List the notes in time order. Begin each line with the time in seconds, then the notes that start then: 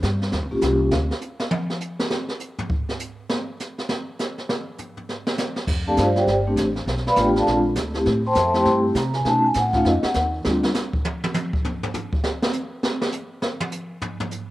0.03 G2, snare, hi-hat pedal
0.22 snare
0.32 D#2, brush sweep, snare
0.42 C#2
0.51 A#1 A#3 C#4 F4 G4
0.61 C2, snare, hi-hat pedal
0.91 D2, snare
1.11 snare
1.21 hi-hat pedal
1.40 snare
1.51 high tom
1.70 snare
1.81 hi-hat pedal
2.00 snare
2.10 snare
2.28 snare
2.40 hi-hat pedal
2.59 floor tom
2.70 kick
2.89 snare
3.00 hi-hat pedal
3.30 snare
3.60 snare, hi-hat pedal
3.78 snare
3.89 snare
4.19 snare, hi-hat pedal
4.38 snare
4.49 snare
4.78 floor tom, hi-hat pedal
4.97 floor tom
5.09 snare
5.27 snare
5.38 snare, hi-hat pedal
5.56 snare
5.67 F2, brush sweep, kick, snare, crash
5.87 A3 C4 D4 G4 A4 D5 F5 A5
5.97 G2 F4 C5 D5 F5, snare, hi-hat pedal
6.16 G4 C5 D5 G5, snare
6.26 G1, brush sweep, snare
6.47 A3 C4 D4 G4
6.56 A1, snare, hi-hat pedal
6.76 snare
6.86 B1, brush sweep, snare
6.97 snare
7.07 B4 D5 F5 B5, snare
7.16 A1 A3 B3 D4 F4, snare, hi-hat pedal
7.20 G4 G5
7.36 A4 D5 F5 A5, snare
7.46 A#1 G#3 C4 D4 F4, brush sweep, snare
7.75 D2, snare, hi-hat pedal
7.94 A3 C4 E4 G4, snare
8.05 A2, brush sweep, snare
8.27 C5 G5 A5 C6
8.35 F2 A4, snare, hi-hat pedal
8.39 C5 E5 A5
8.54 A3 C4 E4 G4 C5 G5 A5 C6, snare
8.65 G2, brush sweep, snare
8.95 C3 A#5, snare, hi-hat pedal
9.13 G#5, snare
9.25 B2 A3 C#4 D#4 F#4 A5, brush sweep, snare
9.46 G#5
9.54 A2, snare, hi-hat pedal
9.58 F#5
9.73 A3 C#4 D#4 F4 F5, kick, snare
9.85 F2 D#5, brush sweep, snare
10.03 F#5, muted upright bass stroke, snare
10.14 D#2, snare, hi-hat pedal
10.45 D2 G3 C4 D4 F4, snare
10.63 snare
10.74 snare, hi-hat pedal
10.93 kick
11.05 high tom
11.24 high tom
11.34 hi-hat pedal, high tom
11.53 kick
11.65 floor tom
11.83 floor tom
11.94 floor tom, hi-hat pedal
12.13 kick
12.24 snare
12.42 snare
12.53 hi-hat pedal
12.83 snare
13.02 snare
13.12 hi-hat pedal
13.42 snare
13.60 high tom
13.72 hi-hat pedal
14.02 floor tom
14.20 floor tom
14.31 hi-hat pedal